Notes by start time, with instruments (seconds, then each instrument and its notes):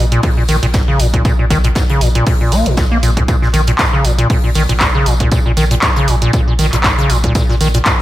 Already playing: sub bass A#1
0.12 acid bass A#2, closed hi-hat
0.23 acid bass A#2, kick, closed hi-hat, open hi-hat
0.37 acid bass A#2
0.48 sub bass A#1, acid bass D#3, open hi-hat, tambourine
0.63 sub bass A#1, acid bass A#2, closed hi-hat
0.74 acid bass G#2, kick, snare, closed hi-hat, tambourine
0.88 acid bass C#3
0.99 sub bass A#1, acid bass A#2, open hi-hat, tambourine
1.14 acid bass A#2, kick, closed hi-hat
1.25 acid bass A#2, kick, closed hi-hat, tambourine
1.39 acid bass A#2
1.50 sub bass A#1, acid bass D#3, kick, open hi-hat, tambourine
1.64 acid bass A#2, closed hi-hat
1.75 acid bass G#2, kick, snare, closed hi-hat, tambourine
1.89 acid bass C#3, closed hi-hat
2.01 sub bass A#1, acid bass A#2, open hi-hat, tambourine
2.15 acid bass A#2, closed hi-hat
2.27 kick, closed hi-hat, open hi-hat
2.41 acid bass A#2
2.52 sub bass A#1, acid bass A#3, open hi-hat, tambourine
2.66 sub bass A#1, acid bass A#2, closed hi-hat
2.77 acid bass A#2, kick, snare, closed hi-hat, tambourine
2.91 acid bass A#3
3.03 sub bass A#1, acid bass A#2, open hi-hat, tambourine
3.17 acid bass A#2, kick, closed hi-hat
3.28 acid bass A#2, kick, closed hi-hat, tambourine
3.42 acid bass A#2, snare
3.53 sub bass A#1, acid bass D#3, open hi-hat, tambourine
3.67 acid bass A#2, closed hi-hat
3.79 acid bass G#2, kick, snare, clap, closed hi-hat, tambourine
3.93 acid bass C#3
4.04 sub bass A#1, acid bass A#2, open hi-hat, tambourine
4.18 acid bass A#2, closed hi-hat
4.30 kick, closed hi-hat, open hi-hat
4.44 acid bass A#2
4.54 sub bass A#1, acid bass D#3, open hi-hat, tambourine
4.69 sub bass A#1, acid bass A#2, closed hi-hat
4.80 acid bass G#2, kick, snare, clap, closed hi-hat, tambourine
4.95 acid bass C#3
5.06 sub bass A#1, acid bass A#2, open hi-hat, tambourine
5.20 acid bass A#2, kick, closed hi-hat
5.32 acid bass A#2, kick, closed hi-hat, tambourine
5.46 acid bass A#2
5.57 sub bass A#1, acid bass D#3, open hi-hat, tambourine
5.71 acid bass A#2, closed hi-hat
5.82 acid bass G#2, kick, snare, clap, closed hi-hat, tambourine
5.96 acid bass C#3, closed hi-hat
6.08 sub bass A#1, acid bass A#2, open hi-hat, tambourine
6.22 acid bass A#2, closed hi-hat
6.33 kick, closed hi-hat, tambourine
6.47 acid bass A#2
6.59 sub bass A#1, acid bass D#3, open hi-hat, tambourine
6.72 sub bass A#1, acid bass A#2, clap, closed hi-hat
6.84 acid bass G#2, kick, snare, clap, closed hi-hat, tambourine
6.98 acid bass C#3, closed hi-hat
7.10 sub bass A#1, acid bass A#2, open hi-hat, tambourine
7.24 acid bass A#2, kick, closed hi-hat
7.35 acid bass A#2, kick, closed hi-hat, tambourine
7.49 acid bass A#2, snare
7.61 sub bass A#1, acid bass D#3, open hi-hat, tambourine
7.74 acid bass A#2, closed hi-hat
7.86 acid bass G#2, kick, snare, clap, closed hi-hat, tambourine